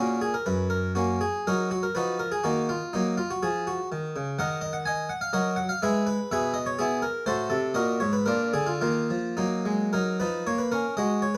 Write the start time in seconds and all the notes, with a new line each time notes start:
Already playing: A#2 A#3 C#4 F#4
0.21 G#4
0.34 A#4
0.46 F#2 B4
0.70 A#4
0.95 A#3 C#4 F#4
1.21 G#4
1.47 F#3 D#4 F#4 A#4
1.71 F#4
1.83 A#4
1.95 F3 D#4 F#4 B4
2.19 A#4
2.32 G#4
2.44 D#3 A#3 D#4 F#4
2.69 F4
2.93 F#3 A#3 D#4
3.17 F4
3.31 F#4
3.43 F3 G#4
3.67 F#4
3.92 D#3
4.16 C#3
4.39 D#3 A#4 D#5 F#5
4.61 D#5
4.73 F#5
4.86 D#5 G#5
5.09 F#5
5.21 F5
5.33 F#3 F#4 A#4 D#5
5.56 F#5
5.69 F5
5.82 G#3 G#4 B4 E5
6.07 B4
6.31 B2 G#4 B4 E5
6.54 D#5
6.66 C#5
6.79 B3 E4 G#4
7.02 A#4
7.26 A2 F#4 A4 C5
7.50 C3 A4
7.74 A#2 F#4 A#4 D#5
8.00 G#2 C#5
8.13 B4
8.26 A#2 D4 F4 A#4
8.53 D3 G#4
8.66 F4
8.81 D#3 A#3 F4
9.10 F3
9.37 F#3 A#3 D#4
9.65 G#3
9.93 F#3 D#4 A#4
10.20 F3 D#4 B4
10.47 A#3 C#5
10.58 B4
10.72 C#4 A#4
10.97 G#3 F#4 D#5
11.22 C#5